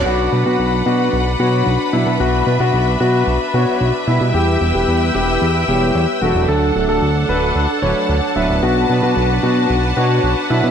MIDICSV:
0, 0, Header, 1, 5, 480
1, 0, Start_track
1, 0, Key_signature, 2, "minor"
1, 0, Tempo, 535714
1, 51, Time_signature, 4, 2, 24, 8
1, 9594, End_track
2, 0, Start_track
2, 0, Title_t, "String section"
2, 0, Program_c, 0, 48
2, 50, Note_on_c, 0, 78, 69
2, 50, Note_on_c, 0, 83, 81
2, 51, Note_on_c, 0, 62, 70
2, 51, Note_on_c, 0, 71, 74
2, 1951, Note_off_c, 0, 78, 0
2, 1971, Note_on_c, 0, 76, 70
2, 3854, Note_off_c, 0, 83, 0
2, 3855, Note_off_c, 0, 62, 0
2, 3855, Note_off_c, 0, 71, 0
2, 3892, Note_on_c, 0, 79, 69
2, 3893, Note_on_c, 0, 71, 77
2, 3893, Note_on_c, 0, 88, 82
2, 5775, Note_off_c, 0, 76, 0
2, 5792, Note_off_c, 0, 79, 0
2, 5793, Note_off_c, 0, 71, 0
2, 5793, Note_off_c, 0, 88, 0
2, 5811, Note_on_c, 0, 62, 70
2, 5812, Note_on_c, 0, 78, 69
2, 5812, Note_on_c, 0, 81, 84
2, 5813, Note_on_c, 0, 69, 75
2, 7712, Note_off_c, 0, 62, 0
2, 7712, Note_off_c, 0, 78, 0
2, 7713, Note_off_c, 0, 69, 0
2, 7729, Note_on_c, 0, 62, 70
2, 7729, Note_on_c, 0, 78, 69
2, 7730, Note_on_c, 0, 71, 78
2, 9594, Note_off_c, 0, 62, 0
2, 9594, Note_off_c, 0, 71, 0
2, 9594, Note_off_c, 0, 78, 0
2, 9594, Note_off_c, 0, 81, 0
2, 9594, End_track
3, 0, Start_track
3, 0, Title_t, "Grand piano"
3, 0, Program_c, 1, 0
3, 50, Note_on_c, 1, 66, 89
3, 296, Note_off_c, 1, 66, 0
3, 411, Note_on_c, 1, 66, 84
3, 656, Note_off_c, 1, 66, 0
3, 771, Note_on_c, 1, 66, 83
3, 1098, Note_off_c, 1, 66, 0
3, 1251, Note_on_c, 1, 66, 81
3, 1578, Note_off_c, 1, 66, 0
3, 1730, Note_on_c, 1, 64, 78
3, 1894, Note_off_c, 1, 64, 0
3, 1971, Note_on_c, 1, 66, 89
3, 2216, Note_off_c, 1, 66, 0
3, 2331, Note_on_c, 1, 66, 84
3, 2576, Note_off_c, 1, 66, 0
3, 2691, Note_on_c, 1, 66, 88
3, 3018, Note_off_c, 1, 66, 0
3, 3173, Note_on_c, 1, 66, 83
3, 3499, Note_off_c, 1, 66, 0
3, 3650, Note_on_c, 1, 64, 80
3, 3814, Note_off_c, 1, 64, 0
3, 3891, Note_on_c, 1, 67, 92
3, 4136, Note_off_c, 1, 67, 0
3, 4251, Note_on_c, 1, 67, 83
3, 4496, Note_off_c, 1, 67, 0
3, 4611, Note_on_c, 1, 67, 84
3, 4938, Note_off_c, 1, 67, 0
3, 5091, Note_on_c, 1, 67, 82
3, 5418, Note_off_c, 1, 67, 0
3, 5569, Note_on_c, 1, 66, 80
3, 5734, Note_off_c, 1, 66, 0
3, 5810, Note_on_c, 1, 69, 89
3, 6056, Note_off_c, 1, 69, 0
3, 6171, Note_on_c, 1, 69, 83
3, 6416, Note_off_c, 1, 69, 0
3, 6532, Note_on_c, 1, 71, 82
3, 6859, Note_off_c, 1, 71, 0
3, 7009, Note_on_c, 1, 73, 84
3, 7337, Note_off_c, 1, 73, 0
3, 7490, Note_on_c, 1, 76, 78
3, 7654, Note_off_c, 1, 76, 0
3, 7729, Note_on_c, 1, 66, 92
3, 7975, Note_off_c, 1, 66, 0
3, 8089, Note_on_c, 1, 66, 84
3, 8335, Note_off_c, 1, 66, 0
3, 8450, Note_on_c, 1, 66, 83
3, 8777, Note_off_c, 1, 66, 0
3, 8931, Note_on_c, 1, 66, 85
3, 9258, Note_off_c, 1, 66, 0
3, 9409, Note_on_c, 1, 64, 82
3, 9574, Note_off_c, 1, 64, 0
3, 9594, End_track
4, 0, Start_track
4, 0, Title_t, "Analog polysynth"
4, 0, Program_c, 2, 90
4, 0, Note_on_c, 2, 59, 88
4, 0, Note_on_c, 2, 62, 83
4, 0, Note_on_c, 2, 66, 80
4, 0, Note_on_c, 2, 74, 99
4, 262, Note_off_c, 2, 59, 0
4, 262, Note_off_c, 2, 62, 0
4, 262, Note_off_c, 2, 66, 0
4, 262, Note_off_c, 2, 74, 0
4, 292, Note_on_c, 2, 54, 80
4, 292, Note_on_c, 2, 59, 72
4, 292, Note_on_c, 2, 62, 73
4, 292, Note_on_c, 2, 71, 85
4, 742, Note_off_c, 2, 71, 0
4, 743, Note_off_c, 2, 54, 0
4, 743, Note_off_c, 2, 59, 0
4, 743, Note_off_c, 2, 62, 0
4, 772, Note_on_c, 2, 54, 74
4, 772, Note_on_c, 2, 59, 68
4, 772, Note_on_c, 2, 62, 67
4, 772, Note_on_c, 2, 71, 80
4, 1063, Note_off_c, 2, 59, 0
4, 1063, Note_off_c, 2, 62, 0
4, 1064, Note_off_c, 2, 54, 0
4, 1064, Note_off_c, 2, 71, 0
4, 1250, Note_on_c, 2, 62, 70
4, 1251, Note_on_c, 2, 54, 78
4, 1251, Note_on_c, 2, 59, 68
4, 1251, Note_on_c, 2, 73, 85
4, 1543, Note_off_c, 2, 54, 0
4, 1543, Note_off_c, 2, 59, 0
4, 1543, Note_off_c, 2, 62, 0
4, 1543, Note_off_c, 2, 73, 0
4, 1730, Note_on_c, 2, 59, 76
4, 1731, Note_on_c, 2, 54, 83
4, 1731, Note_on_c, 2, 62, 77
4, 1731, Note_on_c, 2, 71, 94
4, 2182, Note_off_c, 2, 54, 0
4, 2182, Note_off_c, 2, 59, 0
4, 2182, Note_off_c, 2, 62, 0
4, 2182, Note_off_c, 2, 71, 0
4, 2210, Note_on_c, 2, 54, 80
4, 2210, Note_on_c, 2, 59, 73
4, 2210, Note_on_c, 2, 62, 73
4, 2210, Note_on_c, 2, 71, 87
4, 2662, Note_off_c, 2, 54, 0
4, 2662, Note_off_c, 2, 59, 0
4, 2662, Note_off_c, 2, 62, 0
4, 2662, Note_off_c, 2, 71, 0
4, 2691, Note_on_c, 2, 54, 74
4, 2691, Note_on_c, 2, 59, 67
4, 2691, Note_on_c, 2, 62, 69
4, 2691, Note_on_c, 2, 71, 83
4, 2983, Note_off_c, 2, 54, 0
4, 2983, Note_off_c, 2, 59, 0
4, 2983, Note_off_c, 2, 62, 0
4, 2983, Note_off_c, 2, 71, 0
4, 3170, Note_on_c, 2, 54, 78
4, 3170, Note_on_c, 2, 59, 68
4, 3170, Note_on_c, 2, 62, 70
4, 3170, Note_on_c, 2, 73, 86
4, 3463, Note_off_c, 2, 54, 0
4, 3463, Note_off_c, 2, 59, 0
4, 3463, Note_off_c, 2, 62, 0
4, 3463, Note_off_c, 2, 73, 0
4, 3651, Note_on_c, 2, 55, 84
4, 3651, Note_on_c, 2, 59, 74
4, 3651, Note_on_c, 2, 64, 77
4, 3651, Note_on_c, 2, 71, 95
4, 4102, Note_off_c, 2, 55, 0
4, 4102, Note_off_c, 2, 59, 0
4, 4102, Note_off_c, 2, 64, 0
4, 4102, Note_off_c, 2, 71, 0
4, 4131, Note_on_c, 2, 55, 79
4, 4132, Note_on_c, 2, 59, 71
4, 4132, Note_on_c, 2, 64, 72
4, 4132, Note_on_c, 2, 71, 88
4, 4582, Note_off_c, 2, 55, 0
4, 4583, Note_off_c, 2, 59, 0
4, 4583, Note_off_c, 2, 64, 0
4, 4583, Note_off_c, 2, 71, 0
4, 4611, Note_on_c, 2, 71, 84
4, 4612, Note_on_c, 2, 55, 75
4, 4612, Note_on_c, 2, 59, 69
4, 4612, Note_on_c, 2, 64, 69
4, 4903, Note_off_c, 2, 55, 0
4, 4903, Note_off_c, 2, 59, 0
4, 4903, Note_off_c, 2, 64, 0
4, 4903, Note_off_c, 2, 71, 0
4, 5091, Note_on_c, 2, 55, 76
4, 5091, Note_on_c, 2, 59, 71
4, 5091, Note_on_c, 2, 64, 71
4, 5091, Note_on_c, 2, 73, 84
4, 5383, Note_off_c, 2, 55, 0
4, 5383, Note_off_c, 2, 59, 0
4, 5383, Note_off_c, 2, 64, 0
4, 5383, Note_off_c, 2, 73, 0
4, 5571, Note_on_c, 2, 54, 84
4, 5571, Note_on_c, 2, 57, 74
4, 5571, Note_on_c, 2, 62, 78
4, 5571, Note_on_c, 2, 69, 93
4, 6022, Note_off_c, 2, 54, 0
4, 6022, Note_off_c, 2, 57, 0
4, 6022, Note_off_c, 2, 62, 0
4, 6022, Note_off_c, 2, 69, 0
4, 6051, Note_on_c, 2, 54, 79
4, 6051, Note_on_c, 2, 57, 75
4, 6051, Note_on_c, 2, 62, 72
4, 6051, Note_on_c, 2, 69, 90
4, 6502, Note_off_c, 2, 54, 0
4, 6502, Note_off_c, 2, 57, 0
4, 6502, Note_off_c, 2, 62, 0
4, 6502, Note_off_c, 2, 69, 0
4, 6530, Note_on_c, 2, 54, 74
4, 6530, Note_on_c, 2, 57, 69
4, 6530, Note_on_c, 2, 62, 67
4, 6530, Note_on_c, 2, 69, 83
4, 6823, Note_off_c, 2, 54, 0
4, 6823, Note_off_c, 2, 57, 0
4, 6823, Note_off_c, 2, 62, 0
4, 6823, Note_off_c, 2, 69, 0
4, 7009, Note_on_c, 2, 62, 73
4, 7010, Note_on_c, 2, 54, 78
4, 7010, Note_on_c, 2, 57, 71
4, 7010, Note_on_c, 2, 71, 83
4, 7302, Note_off_c, 2, 57, 0
4, 7302, Note_off_c, 2, 62, 0
4, 7302, Note_off_c, 2, 71, 0
4, 7303, Note_off_c, 2, 54, 0
4, 7489, Note_on_c, 2, 54, 82
4, 7490, Note_on_c, 2, 59, 76
4, 7490, Note_on_c, 2, 62, 77
4, 7490, Note_on_c, 2, 71, 93
4, 7941, Note_off_c, 2, 54, 0
4, 7941, Note_off_c, 2, 59, 0
4, 7942, Note_off_c, 2, 62, 0
4, 7942, Note_off_c, 2, 71, 0
4, 7969, Note_on_c, 2, 54, 80
4, 7970, Note_on_c, 2, 59, 73
4, 7970, Note_on_c, 2, 62, 74
4, 7970, Note_on_c, 2, 71, 89
4, 8421, Note_off_c, 2, 54, 0
4, 8422, Note_off_c, 2, 59, 0
4, 8422, Note_off_c, 2, 62, 0
4, 8422, Note_off_c, 2, 71, 0
4, 8449, Note_on_c, 2, 59, 69
4, 8450, Note_on_c, 2, 54, 74
4, 8450, Note_on_c, 2, 62, 68
4, 8450, Note_on_c, 2, 71, 83
4, 8742, Note_off_c, 2, 59, 0
4, 8742, Note_off_c, 2, 71, 0
4, 8743, Note_off_c, 2, 54, 0
4, 8743, Note_off_c, 2, 62, 0
4, 8930, Note_on_c, 2, 59, 71
4, 8930, Note_on_c, 2, 62, 69
4, 8931, Note_on_c, 2, 54, 75
4, 8931, Note_on_c, 2, 73, 86
4, 9223, Note_off_c, 2, 54, 0
4, 9223, Note_off_c, 2, 59, 0
4, 9223, Note_off_c, 2, 62, 0
4, 9223, Note_off_c, 2, 73, 0
4, 9410, Note_on_c, 2, 59, 78
4, 9410, Note_on_c, 2, 62, 79
4, 9411, Note_on_c, 2, 54, 84
4, 9411, Note_on_c, 2, 71, 93
4, 9594, Note_off_c, 2, 54, 0
4, 9594, Note_off_c, 2, 59, 0
4, 9594, Note_off_c, 2, 62, 0
4, 9594, Note_off_c, 2, 71, 0
4, 9594, End_track
5, 0, Start_track
5, 0, Title_t, "Analog synth bass"
5, 0, Program_c, 3, 38
5, 51, Note_on_c, 3, 35, 94
5, 258, Note_off_c, 3, 35, 0
5, 291, Note_on_c, 3, 47, 80
5, 395, Note_off_c, 3, 47, 0
5, 411, Note_on_c, 3, 47, 78
5, 514, Note_off_c, 3, 47, 0
5, 531, Note_on_c, 3, 35, 81
5, 738, Note_off_c, 3, 35, 0
5, 771, Note_on_c, 3, 47, 86
5, 978, Note_off_c, 3, 47, 0
5, 1011, Note_on_c, 3, 35, 88
5, 1219, Note_off_c, 3, 35, 0
5, 1251, Note_on_c, 3, 47, 98
5, 1458, Note_off_c, 3, 47, 0
5, 1490, Note_on_c, 3, 35, 90
5, 1594, Note_off_c, 3, 35, 0
5, 1731, Note_on_c, 3, 47, 75
5, 1834, Note_off_c, 3, 47, 0
5, 1851, Note_on_c, 3, 47, 93
5, 1955, Note_off_c, 3, 47, 0
5, 1971, Note_on_c, 3, 35, 93
5, 2178, Note_off_c, 3, 35, 0
5, 2210, Note_on_c, 3, 47, 82
5, 2314, Note_off_c, 3, 47, 0
5, 2331, Note_on_c, 3, 47, 78
5, 2435, Note_off_c, 3, 47, 0
5, 2451, Note_on_c, 3, 35, 78
5, 2659, Note_off_c, 3, 35, 0
5, 2691, Note_on_c, 3, 47, 84
5, 2898, Note_off_c, 3, 47, 0
5, 2930, Note_on_c, 3, 35, 84
5, 3034, Note_off_c, 3, 35, 0
5, 3171, Note_on_c, 3, 47, 88
5, 3275, Note_off_c, 3, 47, 0
5, 3411, Note_on_c, 3, 35, 88
5, 3515, Note_off_c, 3, 35, 0
5, 3651, Note_on_c, 3, 47, 90
5, 3755, Note_off_c, 3, 47, 0
5, 3772, Note_on_c, 3, 47, 96
5, 3875, Note_off_c, 3, 47, 0
5, 3892, Note_on_c, 3, 40, 96
5, 4099, Note_off_c, 3, 40, 0
5, 4131, Note_on_c, 3, 28, 84
5, 4235, Note_off_c, 3, 28, 0
5, 4252, Note_on_c, 3, 28, 78
5, 4355, Note_off_c, 3, 28, 0
5, 4372, Note_on_c, 3, 40, 82
5, 4579, Note_off_c, 3, 40, 0
5, 4612, Note_on_c, 3, 28, 86
5, 4819, Note_off_c, 3, 28, 0
5, 4852, Note_on_c, 3, 40, 87
5, 5059, Note_off_c, 3, 40, 0
5, 5091, Note_on_c, 3, 28, 93
5, 5298, Note_off_c, 3, 28, 0
5, 5331, Note_on_c, 3, 40, 93
5, 5435, Note_off_c, 3, 40, 0
5, 5570, Note_on_c, 3, 28, 77
5, 5674, Note_off_c, 3, 28, 0
5, 5690, Note_on_c, 3, 28, 93
5, 5794, Note_off_c, 3, 28, 0
5, 5811, Note_on_c, 3, 38, 95
5, 6018, Note_off_c, 3, 38, 0
5, 6051, Note_on_c, 3, 26, 82
5, 6155, Note_off_c, 3, 26, 0
5, 6170, Note_on_c, 3, 26, 80
5, 6274, Note_off_c, 3, 26, 0
5, 6291, Note_on_c, 3, 38, 81
5, 6498, Note_off_c, 3, 38, 0
5, 6530, Note_on_c, 3, 26, 82
5, 6738, Note_off_c, 3, 26, 0
5, 6769, Note_on_c, 3, 38, 86
5, 6874, Note_off_c, 3, 38, 0
5, 7010, Note_on_c, 3, 26, 83
5, 7114, Note_off_c, 3, 26, 0
5, 7250, Note_on_c, 3, 38, 89
5, 7354, Note_off_c, 3, 38, 0
5, 7490, Note_on_c, 3, 26, 93
5, 7594, Note_off_c, 3, 26, 0
5, 7610, Note_on_c, 3, 26, 96
5, 7714, Note_off_c, 3, 26, 0
5, 7730, Note_on_c, 3, 35, 98
5, 7938, Note_off_c, 3, 35, 0
5, 7970, Note_on_c, 3, 47, 82
5, 8074, Note_off_c, 3, 47, 0
5, 8090, Note_on_c, 3, 47, 76
5, 8194, Note_off_c, 3, 47, 0
5, 8211, Note_on_c, 3, 35, 79
5, 8418, Note_off_c, 3, 35, 0
5, 8451, Note_on_c, 3, 47, 84
5, 8658, Note_off_c, 3, 47, 0
5, 8690, Note_on_c, 3, 35, 91
5, 8898, Note_off_c, 3, 35, 0
5, 8930, Note_on_c, 3, 47, 97
5, 9138, Note_off_c, 3, 47, 0
5, 9170, Note_on_c, 3, 35, 95
5, 9274, Note_off_c, 3, 35, 0
5, 9410, Note_on_c, 3, 47, 79
5, 9514, Note_off_c, 3, 47, 0
5, 9530, Note_on_c, 3, 47, 89
5, 9594, Note_off_c, 3, 47, 0
5, 9594, End_track
0, 0, End_of_file